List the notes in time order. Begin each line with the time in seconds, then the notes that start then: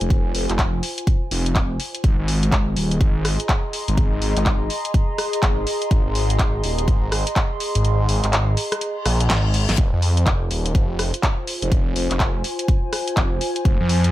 Already playing: F4 C5 G#5
0.01 F1, closed hi-hat
0.10 kick, closed hi-hat
0.35 F1, open hi-hat
0.49 F1, clap, closed hi-hat
0.59 kick, clap, closed hi-hat
0.83 open hi-hat
0.98 closed hi-hat
1.07 kick, closed hi-hat
1.31 F1, open hi-hat
1.46 closed hi-hat
1.55 kick, clap, closed hi-hat
1.80 open hi-hat
1.95 closed hi-hat
2.04 G#1 G#4, kick, closed hi-hat
2.19 G#1
2.25 D#5, open hi-hat
2.43 closed hi-hat
2.47 A#5
2.52 G#1, kick, clap, closed hi-hat
2.59 C6
2.76 D#1, open hi-hat
2.91 closed hi-hat
3.01 G#1, kick, closed hi-hat
3.25 cross-stick, open hi-hat
3.40 closed hi-hat
3.49 kick, clap, closed hi-hat
3.73 open hi-hat
3.88 G#1, closed hi-hat
3.97 kick, closed hi-hat
4.22 G#1, open hi-hat
4.37 G#1, clap, closed hi-hat
4.46 kick, clap, closed hi-hat
4.70 open hi-hat
4.85 closed hi-hat
4.94 kick, closed hi-hat
5.18 cross-stick, open hi-hat
5.33 closed hi-hat
5.43 G#1, kick, clap, closed hi-hat
5.67 open hi-hat
5.82 closed hi-hat
5.91 G#1, kick, closed hi-hat
6.06 G#1
6.15 open hi-hat
6.30 closed hi-hat
6.39 G#1, kick, clap, closed hi-hat
6.64 D#1, open hi-hat
6.78 closed hi-hat
6.88 G#1, kick, closed hi-hat
7.12 cross-stick, open hi-hat
7.27 closed hi-hat
7.36 kick, clap, closed hi-hat
7.60 open hi-hat
7.75 G#1, closed hi-hat
7.85 closed hi-hat
8.09 G#1, open hi-hat
8.24 G#1, clap, closed hi-hat
8.33 clap, closed hi-hat
8.57 open hi-hat
8.72 cross-stick, closed hi-hat
8.81 closed hi-hat, reverse cymbal
9.06 A#1, cross-stick, open hi-hat
9.20 closed hi-hat
9.30 G#1, snare, clap, closed hi-hat
9.54 open hi-hat
9.69 G#1, snare, closed hi-hat
9.78 F1 F4, kick, closed hi-hat
9.89 F2 C5
10.02 open hi-hat
10.17 closed hi-hat
10.26 F1, kick, clap, closed hi-hat
10.51 D#1, open hi-hat
10.66 closed hi-hat
10.75 F1, kick, closed hi-hat
10.99 cross-stick, open hi-hat
11.03 G#5
11.14 closed hi-hat
11.23 kick, clap, closed hi-hat
11.47 open hi-hat
11.62 F1, closed hi-hat
11.72 kick, closed hi-hat
11.96 F1, open hi-hat
12.11 F1, clap, closed hi-hat
12.20 kick, clap, closed hi-hat
12.44 open hi-hat
12.59 closed hi-hat
12.68 kick, closed hi-hat
12.93 cross-stick, open hi-hat
13.08 closed hi-hat
13.17 F1, kick, clap, closed hi-hat
13.41 open hi-hat
13.56 closed hi-hat
13.65 F1, kick, closed hi-hat
13.80 F2
13.89 open hi-hat
14.04 closed hi-hat